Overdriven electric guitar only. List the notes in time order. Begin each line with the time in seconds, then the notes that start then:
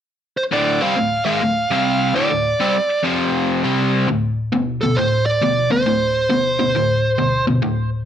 0.51 D2 A2 D3
0.81 C3 G3 C4
0.97 D2 A2
1.26 G#2 D#3 G#3
1.42 D2 A2
1.71 C3 G3 C4
2.14 D2 A2 D3
2.30 D2 A2
2.60 C3 G3 C4
3.03 F2 C3 F3
3.64 C3 G3 C4
4.08 D2 A2
4.53 D2 B2
4.83 D2 B2
4.99 D2 A2
5.42 D2 B2
5.70 D2 B2
5.86 D2 A2
6.30 D2 B2
6.59 D2 B2
6.75 D2 A2
7.18 D2 B2
7.47 D2 B2
7.62 D2 A2